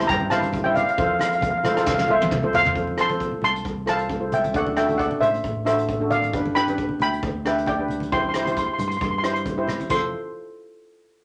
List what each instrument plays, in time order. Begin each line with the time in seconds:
Already playing: steel pan E4
0.00 steel pan G4 C5
0.07 fingered electric bass G2, steel pan G5 A#5, kick, cross-stick, closed hi-hat
0.20 high conga
0.30 fingered electric bass G2, steel pan E4 G4 C5 F5 A5, cross-stick, closed hi-hat, low conga
0.42 closed hi-hat, high conga
0.53 kick, closed hi-hat, high conga
0.64 steel pan E4 G4 C5 E5 G5, high conga
0.74 steel pan D5 F5, closed hi-hat, low conga
0.83 steel pan F5
0.88 steel pan F5, closed hi-hat
0.98 fingered electric bass F2, steel pan F4 A4 C5 F5, kick, closed hi-hat
1.06 steel pan F5
1.14 steel pan F5
1.19 steel pan F5, cross-stick, closed hi-hat, high conga
1.28 steel pan F5
1.32 steel pan F5, closed hi-hat
1.41 steel pan F5, kick, closed hi-hat, low conga
1.51 steel pan F5
1.58 steel pan F5
1.64 steel pan F4 A4 C5 F5, cross-stick, closed hi-hat, low conga
1.74 steel pan F4 A4 C5 F5, cross-stick, closed hi-hat
1.79 steel pan F5
1.85 fingered electric bass C2, steel pan F5, kick, snare
1.95 steel pan F5, high conga
1.99 steel pan F5, snare
2.08 fingered electric bass C2, steel pan F4 A4 C5 E5 F5, low conga
2.21 high tom, high conga
2.31 kick, mid tom, high conga
2.43 steel pan F4 A4 C5, high conga
2.53 steel pan C5 F5, floor tom, low conga
2.65 floor tom, low conga
2.75 fingered electric bass F2, steel pan F4 A4 C5, kick, closed hi-hat
2.87 high conga
2.97 steel pan F4 A4 C5 A5 C6, cross-stick, closed hi-hat
3.10 steel pan F4 A4 C5, closed hi-hat, high conga
3.20 kick, closed hi-hat
3.31 low conga
3.42 fingered electric bass C2, steel pan A5 C6, closed hi-hat, low conga
3.55 closed hi-hat
3.65 fingered electric bass C2, kick, closed hi-hat
3.86 steel pan F4 A4 C5 A5, cross-stick, closed hi-hat
3.90 steel pan F5
3.99 closed hi-hat
4.09 kick, closed hi-hat, high conga
4.20 steel pan F4 A4 C5
4.32 steel pan E5 G5, closed hi-hat, low conga
4.44 closed hi-hat, high conga
4.54 fingered electric bass D2, steel pan D4 F#4 A4 D5 F#5, kick, closed hi-hat
4.67 high conga
4.76 steel pan D4 F#4 A4 E5 G5, cross-stick, closed hi-hat
4.89 steel pan D4 F#4 A4, closed hi-hat, high conga
4.98 steel pan D5 F#5, kick, closed hi-hat
5.11 low conga
5.21 fingered electric bass A1, steel pan C5 E5, closed hi-hat, low conga
5.34 closed hi-hat
5.44 fingered electric bass A1, kick, closed hi-hat
5.65 steel pan D4 F#4 A4 C5 E5, cross-stick, closed hi-hat
5.78 closed hi-hat
5.89 kick, closed hi-hat, high conga
6.00 steel pan D4 F#4 A4
6.10 steel pan D5 F5, closed hi-hat, low conga
6.22 closed hi-hat, high conga
6.33 fingered electric bass G1, steel pan D4 G4 B4, kick, closed hi-hat
6.46 high conga
6.55 steel pan D4 G4 B4 G5 B5, cross-stick, closed hi-hat
6.67 steel pan D4 G4 B4, closed hi-hat, high conga
6.78 kick, closed hi-hat
6.89 low conga
7.00 fingered electric bass D2, steel pan G5 B5, closed hi-hat, low conga
7.13 closed hi-hat
7.22 fingered electric bass D2, kick, closed hi-hat
7.45 steel pan D4 G4 B4 E5 G5, cross-stick, closed hi-hat
7.58 closed hi-hat
7.66 steel pan D5 G5, kick, closed hi-hat, high conga
7.79 steel pan D4 G4 B4
7.88 closed hi-hat, low conga
8.00 closed hi-hat, high conga
8.12 fingered electric bass C2, steel pan E4 G4 C5 G5 C6, kick, closed hi-hat
8.20 steel pan C6, high conga
8.29 steel pan C6
8.34 steel pan E4 G4 C5 C6, cross-stick, closed hi-hat
8.45 steel pan E4 G4 C5 C6, closed hi-hat, high conga
8.52 steel pan C6
8.57 steel pan C6, kick, closed hi-hat
8.66 steel pan C6
8.73 steel pan C6
8.78 fingered electric bass G2, steel pan C6, closed hi-hat, low conga
8.88 steel pan C6, closed hi-hat
8.97 steel pan C6, closed hi-hat
9.01 fingered electric bass G2, steel pan C6, kick
9.11 steel pan C6
9.18 steel pan C6
9.23 steel pan E4 G4 C5 C6, cross-stick, closed hi-hat
9.34 steel pan C6, closed hi-hat
9.46 kick, closed hi-hat, high conga
9.57 steel pan E4 G4 C5
9.67 cross-stick, closed hi-hat, low conga
9.80 closed hi-hat, high conga
9.90 fingered electric bass F1, steel pan F4 A4 C5 C6, kick, crash, high conga